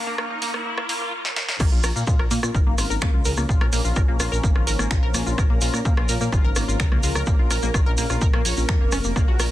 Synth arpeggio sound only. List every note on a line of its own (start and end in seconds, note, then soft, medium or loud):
0.07 0.15 A#3 loud
0.18 0.29 A#3 loud
0.30 0.41 A#3 medium
0.42 0.51 A#3 loud
0.54 0.64 A#3 loud
0.66 0.76 A#3 medium
0.78 0.86 A#3 loud
0.89 1.00 A#3 loud
1.01 1.12 A#3 medium
1.60 1.69 A#3 loud
1.72 1.83 F4 medium
1.84 1.89 A#4 loud
1.96 2.04 A#3 loud
2.07 2.19 F4 medium
2.19 2.24 A#4 loud
2.31 2.40 A#3 loud
2.43 2.54 F4 medium
2.55 2.60 A#4 loud
2.67 2.75 A#3 loud
2.78 2.90 F4 medium
2.90 2.95 A#4 loud
3.02 3.11 A#3 loud
3.14 3.25 F4 medium
3.25 3.31 A#4 loud
3.37 3.46 A#3 loud
3.49 3.60 F4 medium
3.61 3.66 A#4 loud
3.73 3.81 A#3 loud
3.85 3.96 F4 medium
3.96 4.02 A#4 loud
4.08 4.17 A#3 loud
4.20 4.31 F4 medium
4.32 4.37 A#4 loud
4.44 4.52 A#3 loud
4.56 4.67 F4 medium
4.67 4.72 A#4 loud
4.79 4.88 A#3 loud
4.91 5.02 F4 medium
5.03 5.08 A#4 loud
5.14 5.23 A#3 loud
5.26 5.37 F4 medium
5.38 5.43 A#4 loud
5.50 5.58 A#3 loud
5.62 5.73 F4 medium
5.74 5.79 A#4 loud
5.85 5.94 A#3 loud
5.97 6.08 F4 medium
6.09 6.14 A#4 loud
6.21 6.29 A#3 loud
6.32 6.44 F4 medium
6.45 6.50 A#4 loud
6.56 6.65 A#3 loud
6.68 6.79 F4 medium
6.80 6.85 A#4 loud
6.92 7.00 A#3 loud
7.03 7.15 F4 medium
7.15 7.20 A#4 loud
7.27 7.36 A#3 loud
7.39 7.50 F4 medium
7.51 7.56 A#4 loud
7.63 7.71 A#3 loud
7.74 7.86 F4 medium
7.86 7.91 A#4 loud
7.98 8.07 A#3 loud
8.10 8.21 F4 medium
8.22 8.27 A#4 loud
8.34 8.42 A#3 loud
8.45 8.54 C#5 medium
8.57 8.66 C#4 medium
8.69 8.77 A#3 medium
8.81 8.92 A#3 medium
8.92 8.98 C#4 loud
9.04 9.13 A#3 medium
9.16 9.25 A#3 loud
9.28 9.39 F#4 medium
9.40 9.45 A#4 loud